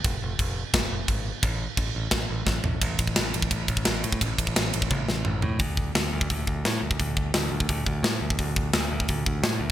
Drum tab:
CC |x---x---x---x---|x---x---x-------|----------------|----------------|
RD |----------------|----------------|x-x-x-x-x-x-x-x-|x-x-x-x---------|
HH |----------------|----------------|----------------|----------------|
SD |--------o-------|--------o---o---|----o-------o---|----o-----o-----|
T1 |----------------|----------------|----------------|--------o-------|
T2 |----------------|----------------|----------------|------------o---|
FT |----------------|--------------o-|----------------|--------------o-|
BD |o---o---o---o---|o---o---o---o---|o-oo---oo-oo---o|o-oo---oo-------|

CC |----------------|----------------|----------------|
RD |----------------|----------------|----------------|
HH |o---o---o---o---|o---o---o---o---|o---o---o---o---|
SD |----o-------o---|----o-------o---|----o-------o---|
T1 |----------------|----------------|----------------|
T2 |----------------|----------------|----------------|
FT |----------------|----------------|----------------|
BD |o-o----oo-o----o|o-o----oo-o----o|o-o----oo-o-----|